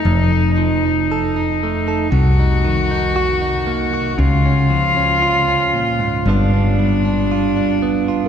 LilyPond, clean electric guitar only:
\new Staff \with { instrumentName = "Clean electric guitar" } { \time 4/4 \key f \phrygian \tempo 4 = 58 << { r16 ees'8 ees'16 a'16 ees'16 a16 a'16 r16 ees'8 ees'16 ges'16 ees'16 bes16 ges'16 | r16 des'8 des'16 f'16 des'8. <g b d' f'>16 d'8 d'16 f'16 d'16 b16 f'16 | } \\ { f,8 f4. c8 ees4. | des8 f4 bes,16 aes,16 g,8 g4. | } >> }